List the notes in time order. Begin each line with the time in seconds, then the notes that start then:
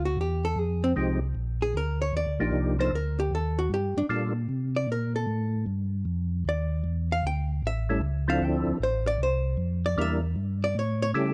Already playing: D2
0.05 F#4
0.17 E2 G4
0.45 A4
0.56 F2 G#4
0.84 C4
0.96 C2 F3 G#3 C4 D#4 G4
1.35 A#1
1.62 G#4
1.74 D2 A#4
2.02 C#5
2.13 D#2 D5
2.26 D2
2.39 A#1 F3 A#3 D4 D#4 G4
2.52 C2
2.79 F3 A#3 D4 D#4 A4 C5
2.92 D2 A#4
3.20 G4
3.31 D#2 A4
3.59 F#4
3.70 G2
3.74 G4
3.96 G2 D4
4.09 A#2 G3 A#3 D4 F4 A4
4.49 C3
4.76 D5
4.87 A#2
4.92 A#4
5.16 A4
5.27 A2
5.66 G2
6.05 F2
6.45 D#2 D5
6.84 E2
7.12 F5
7.23 D2 G5
7.62 A1
7.67 E5
7.89 G3 A3 C#4 E4 A4
8.01 C#2
8.28 F3 C4 D4 E4 A4 F5
8.40 D2
8.45 G5
8.67 D2
8.79 A1
8.83 C5
9.07 D5
9.18 C2
9.23 C5
9.57 F2
9.86 D5
9.97 E2 G3 A#3 D4 E4 A#4
10.01 E5
10.36 G2
10.64 D5
10.75 A2
10.79 C#5
11.02 C#5
11.14 C#3 G3 A3 C#4 E4 G4 A4